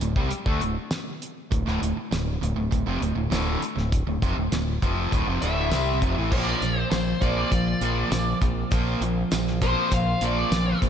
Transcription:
0.00 fingered electric bass D1, overdriven electric guitar D2 A2, closed hi-hat
0.16 fingered electric bass C2, overdriven electric guitar C3 G3, kick
0.31 muted fingered electric bass stroke, muted overdriven electric guitar stroke, closed hi-hat
0.46 fingered electric bass D2, overdriven electric guitar D3 A3, kick
0.61 fingered electric bass D1, overdriven electric guitar D2 A2, closed hi-hat
0.91 snare, closed hi-hat, tambourine
1.22 closed hi-hat
1.52 fingered electric bass D1, overdriven electric guitar D2 A2, kick, closed hi-hat
1.66 fingered electric bass D1, overdriven electric guitar D2 A2, snare
1.82 fingered electric bass D1, overdriven electric guitar D2 A2, closed hi-hat
1.96 muted overdriven electric guitar stroke, muted fingered electric bass stroke
2.12 fingered electric bass D1, overdriven electric guitar D2 A2, snare, closed hi-hat, tambourine
2.42 fingered electric bass D1, overdriven electric guitar D2 A2, closed hi-hat
2.56 fingered electric bass D1, overdriven electric guitar D2 A2
2.72 fingered electric bass D1, overdriven electric guitar D2 A2, kick, closed hi-hat
2.86 fingered electric bass F1, overdriven electric guitar F2 C3
3.01 fingered electric bass D1, overdriven electric guitar D2 A2, closed hi-hat
3.16 fingered electric bass D1, overdriven electric guitar D2 A2
3.31 fingered electric bass D1, overdriven electric guitar D2 A2 D3, snare, closed hi-hat, tambourine
3.61 muted fingered electric bass stroke, muted overdriven electric guitar stroke, closed hi-hat
3.77 fingered electric bass D1, overdriven electric guitar D2 A2, snare
3.92 kick, closed hi-hat
4.07 fingered electric bass D1, overdriven electric guitar D2 A2
4.22 fingered electric bass F1, overdriven electric guitar F2 C3, kick, closed hi-hat
4.37 fingered electric bass D1, overdriven electric guitar D2 A2
4.52 fingered electric bass D1, overdriven electric guitar D2 A2, snare, closed hi-hat, tambourine
4.82 fingered electric bass F1, overdriven electric guitar F2 C3 F3, kick, closed hi-hat
5.12 fingered electric bass D1, overdriven electric guitar D2 A2, kick, closed hi-hat
5.27 fingered electric bass F1, overdriven electric guitar F2 C3
5.42 fingered electric bass D1, overdriven electric guitar D2 A2 D3, lead electric guitar E5, closed hi-hat
5.71 fingered electric bass C2, overdriven electric guitar C3 G3 C4, snare, closed hi-hat, tambourine
6.02 fingered electric bass F1, overdriven electric guitar F2 C3, kick, closed hi-hat
6.17 fingered electric bass A1, overdriven electric guitar A2 E3
6.31 fingered electric bass A#1, steel-string acoustic guitar A#2 D3 A#3 C4 F4 C5, overdriven electric guitar A#2 F3 A#3, lead electric guitar D5, kick, crash
6.61 fingered electric bass A#1, overdriven electric guitar A#2 F3, snare, closed hi-hat
6.79 lead electric guitar C5
6.90 fingered electric bass A#1, overdriven electric guitar A#2 F3, steel-string acoustic guitar A#3 C4 F4 C5, lead electric guitar C5, snare, closed hi-hat, tambourine
7.21 fingered electric bass A#1, overdriven electric guitar A#2 F3 A#3, steel-string acoustic guitar A#3 C4 F4 C5, lead electric guitar D5, kick, closed hi-hat
7.51 fingered electric bass A#1, overdriven electric guitar A#2 F3, steel-string acoustic guitar A#2 D3 A#3 C4 F4 C5, kick, closed hi-hat
7.81 fingered electric bass A#1, overdriven electric guitar A#2 F3 A#3, closed hi-hat
8.10 fingered electric bass A#1, overdriven electric guitar A#2 F3, steel-string acoustic guitar A#3 C4 F4 C5, snare, closed hi-hat, tambourine
8.41 fingered electric bass A#1, overdriven electric guitar A#2 F3, steel-string acoustic guitar A#3 C4 F4 C5, kick, closed hi-hat
8.71 fingered electric bass A#1, steel-string acoustic guitar A#2 D3 A#3 C4 F4 C5, overdriven electric guitar A#2 F3 A#3, kick, closed hi-hat
9.01 fingered electric bass A#1, overdriven electric guitar A#2 F3, closed hi-hat
9.31 fingered electric bass A#1, overdriven electric guitar A#2 F3, steel-string acoustic guitar A#3 C4 F4 C5, snare, closed hi-hat, tambourine
9.47 snare
9.61 overdriven electric guitar A#2 F3 A#3, steel-string acoustic guitar A#3 C4 F4 C5, lead electric guitar C5, kick, closed hi-hat
9.91 fingered electric bass A#1, steel-string acoustic guitar A#2 D3 A#3 C4 F4 C5, overdriven electric guitar A#2 F3, lead electric guitar F5, kick, closed hi-hat
10.21 fingered electric bass A#1, overdriven electric guitar A#2 F3 A#3, lead electric guitar D5, closed hi-hat
10.51 fingered electric bass A#1, overdriven electric guitar A#2 F3, steel-string acoustic guitar A#3 C4 F4 C5, snare, closed hi-hat, tambourine
10.82 fingered electric bass A#1, overdriven electric guitar A#2 F3, steel-string acoustic guitar A#3 C4 F4 C5, kick, closed hi-hat

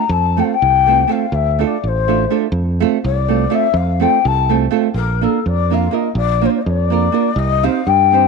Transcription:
Already playing: shakuhachi A#5
0.09 fingered electric bass F2, shakuhachi A5
0.37 nylon-string guitar A3 C4 F4 A4, shakuhachi G5
0.44 shakuhachi F5
0.54 shakuhachi G5
0.62 fingered electric bass C2
0.86 nylon-string guitar A3 C4 F4 A4
1.07 nylon-string guitar A3 C4 F4 A4, shakuhachi F5
1.32 fingered electric bass D2, shakuhachi E5
1.59 nylon-string guitar A3 D4 F4 A4
1.64 shakuhachi D5 D#5
1.84 fingered electric bass A1
1.88 shakuhachi C5
2.08 nylon-string guitar A3 D4 F4 A4
2.30 nylon-string guitar A3 D4 F4 A4
2.52 fingered electric bass F2
2.80 nylon-string guitar A3 C4 F4 A4
3.04 fingered electric bass C2, shakuhachi D5
3.28 nylon-string guitar A3 C4 F4 A4
3.50 nylon-string guitar A3 C4 F4 A4
3.54 shakuhachi E5
3.74 fingered electric bass F2, shakuhachi F5
4.00 nylon-string guitar A3 C4 F4 A4, shakuhachi G5
4.25 fingered electric bass C2, shakuhachi A5
4.49 nylon-string guitar A3 C4 F4 A4
4.71 nylon-string guitar A3 C4 F4 A4
4.94 fingered electric bass A#1, shakuhachi A#4
5.21 nylon-string guitar A#3 D4 F4 A#4, shakuhachi A4
5.46 fingered electric bass F2, shakuhachi D5
5.70 nylon-string guitar A#3 D4 F4 A#4, shakuhachi F5
5.91 nylon-string guitar A#3 D4 F4 A#4, shakuhachi D#5
6.15 fingered electric bass A#1, shakuhachi D5
6.41 nylon-string guitar A#3 D4 F4 A#4, shakuhachi C5
6.50 shakuhachi D5
6.57 shakuhachi C5
6.62 shakuhachi D#5
6.66 fingered electric bass F2, shakuhachi D5
6.90 nylon-string guitar A#3 D4 F4 A#4
7.12 nylon-string guitar A#3 D4 F4 A#4
7.36 fingered electric bass C2, shakuhachi D#5
7.63 nylon-string guitar C4 D#4 G4 C5, shakuhachi F5
7.87 fingered electric bass G2, shakuhachi G5
8.12 nylon-string guitar C4 D#4 G4 C5

